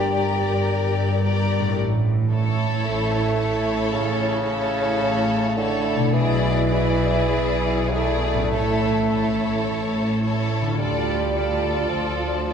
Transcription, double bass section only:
0.00 0.57 G1 medium
0.70 1.65 G1 medium
1.78 2.71 A1 medium
2.85 3.79 A1 medium
3.93 4.89 A1 medium
5.03 6.01 A1 medium
6.13 7.17 B1 medium
7.32 8.39 B1 medium
8.53 9.53 A1 medium
9.67 10.67 A1 medium
10.81 11.78 D2 medium
11.90 12.53 D2 medium

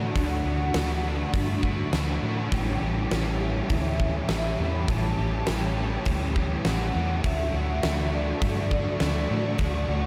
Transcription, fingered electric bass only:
0.00 0.11 A2 medium
0.15 0.40 D2 medium
0.45 0.70 D2 medium
0.74 1.24 D2 medium
1.34 1.83 G2 medium
1.93 2.18 D2 medium
2.22 2.47 A2 medium
2.52 2.77 A1 medium
2.82 3.07 A1 medium
3.11 3.60 A1 medium
3.70 4.19 D2 medium
4.29 4.54 A1 medium
4.59 4.84 E2 medium
4.88 5.13 A1 medium
5.19 5.43 A1 medium
5.48 5.97 A1 medium
6.06 6.55 D2 medium
6.66 6.90 A1 medium
6.95 7.19 E2 medium
7.24 7.49 D2 medium
7.53 7.78 D2 medium
7.84 8.32 D2 medium
8.41 8.91 G2 medium
9.01 9.25 D2 medium
9.30 9.55 A2 medium
9.59 9.84 D2 medium
9.88 10.06 D2 medium

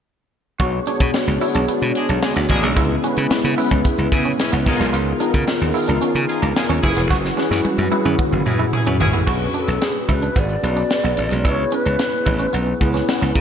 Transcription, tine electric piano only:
0.59 0.77 B3 medium
0.59 0.78 D4 medium
0.59 0.78 F#4 medium
0.59 0.78 G#4 medium
0.59 0.78 C#5 medium
0.87 1.23 B3 medium
0.87 1.23 D4 medium
0.87 1.23 F#4 medium
0.87 1.23 G#4 medium
0.87 1.23 C#5 medium
1.40 2.13 B3 medium
1.40 2.13 D4 medium
1.40 2.13 F#4 medium
1.40 2.13 G#4 medium
1.40 2.13 C#5 medium
2.76 2.94 B3 medium
2.76 2.94 C#4 medium
2.76 2.94 E4 medium
2.76 2.95 G#4 medium
2.76 2.95 B4 medium
3.03 3.39 B3 medium
3.03 3.40 C#4 medium
3.03 3.40 E4 medium
3.03 3.40 G#4 medium
3.03 3.40 B4 medium
3.57 4.29 B3 medium
3.57 4.30 C#4 medium
3.57 4.30 E4 medium
3.57 4.30 G#4 medium
3.57 4.30 B4 medium
4.66 5.09 B3 medium
4.66 5.09 D#4 medium
4.66 5.09 F4 medium
4.66 5.10 G#4 medium
4.66 5.10 A#4 medium
5.20 5.56 B3 medium
5.20 5.56 D#4 medium
5.20 5.56 F4 medium
5.20 5.57 G#4 medium
5.20 5.57 A#4 medium
5.74 6.46 B3 medium
5.74 6.47 D#4 medium
5.74 6.47 F4 medium
5.74 6.47 G#4 medium
5.74 6.47 A#4 medium
6.83 7.26 C#4 medium
6.83 7.26 E4 medium
6.83 7.26 F#4 medium
6.83 7.27 G#4 medium
6.83 7.27 B4 medium
7.37 7.73 C#4 medium
7.37 7.73 E4 medium
7.37 7.73 F#4 medium
7.37 7.74 G#4 medium
7.37 7.74 B4 medium
7.91 8.64 C#4 medium
7.91 8.64 E4 medium
7.91 8.64 F#4 medium
7.91 8.64 G#4 medium
7.91 8.64 B4 medium
9.26 9.45 C#4 medium
9.26 9.45 D4 medium
9.26 9.45 F#4 medium
9.26 9.45 G#4 medium
9.26 9.45 B4 medium
9.54 10.26 C#4 medium
9.54 10.27 D4 medium
9.54 10.27 F#4 medium
9.54 10.27 G#4 medium
9.54 10.27 B4 medium
10.62 11.17 B3 medium
10.62 11.17 D4 medium
10.62 11.18 F#4 medium
10.62 11.18 G#4 medium
10.62 11.18 B4 medium
11.44 11.62 B3 medium
11.44 11.63 C#4 medium
11.44 11.63 E4 medium
11.44 11.63 G#4 medium
11.44 11.63 B4 medium
11.71 12.44 B3 medium
11.71 12.44 C#4 medium
11.71 12.44 E4 medium
11.71 12.44 G#4 medium
11.71 12.45 B4 medium
12.80 13.33 B3 medium
12.80 13.35 C#4 medium
12.80 13.35 E4 medium
12.80 13.34 G#4 medium
12.80 13.35 B4 loud
12.80 13.06 G#5 medium
13.08 13.34 F#5 medium
13.34 13.41 B3 medium
13.34 13.41 D#4 medium
13.34 13.41 F4 medium
13.34 13.41 G#4 medium
13.34 13.41 A#4 medium
13.34 13.41 F5 medium

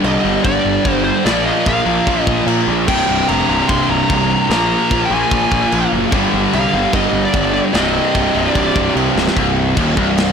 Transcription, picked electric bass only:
0.04 0.16 C2 loud
0.24 0.37 G1 loud
0.45 0.57 G1 medium
0.65 0.77 G1 medium
0.85 1.10 G1 medium
1.26 1.51 A#1 loud
1.67 1.79 A#1 loud
1.86 1.99 A#1 loud
2.07 2.20 A#1 loud
2.27 2.40 A#1 medium
2.47 2.59 A#2 medium
2.67 2.90 A#1 loud
2.88 3.01 C1 loud
3.09 3.21 C1 medium
3.29 3.41 F1 medium
3.49 3.61 C1 medium
3.69 3.82 C1 medium
3.89 4.02 C1 medium
4.10 4.35 C1 loud
4.50 4.75 A#1 loud
4.91 5.04 A#1 medium
5.10 5.23 A#1 loud
5.32 5.44 A#1 medium
5.52 5.64 A#1 medium
5.72 5.85 A#1 medium
5.93 6.05 F#1 loud
6.12 6.25 G1 loud
6.34 6.46 G1 medium
6.54 6.66 C2 loud
6.73 6.86 G1 loud
6.93 7.06 G1 loud
7.13 7.25 G1 medium
7.34 7.59 G1 loud
7.74 7.99 C1 loud
8.15 8.27 C1 medium
8.35 8.47 C1 loud
8.56 8.68 C1 loud
8.76 8.88 C1 medium
8.95 9.08 C2 medium
9.16 9.28 C1 medium
9.37 9.74 C1 loud
9.77 9.96 D#1 loud
9.97 10.32 C1 loud

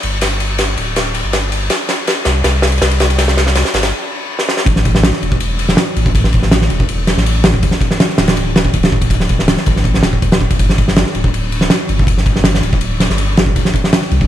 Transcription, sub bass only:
0.04 0.76 G1 medium
0.78 1.23 D1 medium
1.24 1.69 G1 medium
2.26 2.43 C2 medium
2.44 2.80 C2 loud
2.81 3.64 C2 loud
3.74 3.92 G1 medium
4.66 5.12 A1 loud
5.22 5.76 E1 medium
5.96 6.69 A1 loud
6.70 7.15 E1 medium
7.17 7.61 A1 medium
8.18 8.35 D1 medium
8.37 8.72 D1 loud
8.74 9.56 D1 loud
9.67 10.02 A1 medium
10.04 10.49 D1 loud
10.59 11.04 G1 loud
11.15 11.69 D1 medium
11.89 12.61 G1 loud
12.63 13.08 D1 medium
13.10 13.54 G1 medium
14.11 14.27 C2 medium

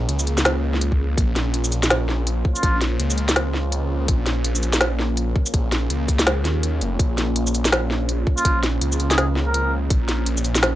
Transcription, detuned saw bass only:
0.08 1.17 C#2 medium
1.18 2.44 A#1 loud
2.63 2.99 A#1 loud
3.00 4.08 C#2 medium
4.08 5.35 A#1 loud
5.54 5.89 A#1 loud
5.90 6.44 C#2 loud
6.45 6.83 D#2 loud
6.81 6.98 F1 loud
6.99 8.26 A#1 loud
8.45 8.80 A#1 loud
8.81 9.89 C#2 loud
9.90 10.75 A#1 loud

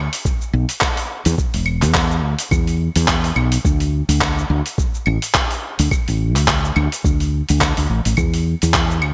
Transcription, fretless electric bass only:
0.53 0.64 B1 medium
1.26 1.34 E2 loud
1.54 1.84 E1 medium
1.82 2.23 E2 medium
2.23 2.34 D2 loud
2.51 2.88 E2 medium
2.96 3.30 E2 loud
3.36 3.57 B1 medium
3.65 4.01 D2 medium
4.09 4.43 D2 medium
4.50 4.61 D2 loud
5.07 5.17 A1 loud
5.79 5.87 D2 loud
6.08 6.36 A1 medium
6.36 6.70 D2 medium
6.76 6.87 D2 loud
7.05 7.41 D2 medium
7.50 7.77 D2 medium
7.78 7.86 D2 medium
7.90 8.00 A1 medium
8.06 8.14 A1 medium
8.17 8.54 E2 medium
8.63 9.03 E2 medium
9.03 9.13 D2 loud

